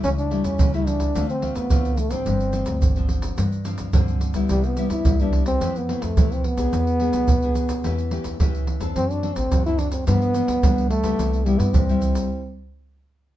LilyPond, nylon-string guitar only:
\new Staff \with { instrumentName = "Nylon-string guitar" } { \time 4/4 \key c \major \tempo 4 = 108 << { <g a e'>8 <g a e'>8. <g a e'>8. <a c' f'>16 r16 <a c' f'>8 <a c' f'>8 r16 <f c' d'>16~ | <f c' d'>8 <f c' d'>8 r16 <f c' d'>4 r16 <f c' d'>8 <f c' d'>8. <g b e'>16~ | <g b e'>8 <g b e'>8. <g b e'>8. <e a c'>16 r16 <e a c'>8 <e a c'>8 r16 <b d' aes'>16~ | <b d' aes'>8 <b d' gis'>8 r16 <b d' gis'>8. <a cis' g'>16 r16 <a cis' g'>8 <a cis' g'>8. <c' d' a'>16~ |
<c' d' a'>8 <c' d' a'>8 r16 <c' d' a'>8. <f b d'>8 <f b d'>8 <f b d'>8 r16 <g b e'>16~ | <g b e'>8 <g b e'>8. <g e'>4 r4. r16 | } \\ { cis4 cis4 d4 a,4 | g,4 d4 g,4 d4 | c4 g,4 f,4 c4 | e4 b,4 e4 e4 |
fis4 fis4 g,4 d4 | c4 g,4 r2 | } >> }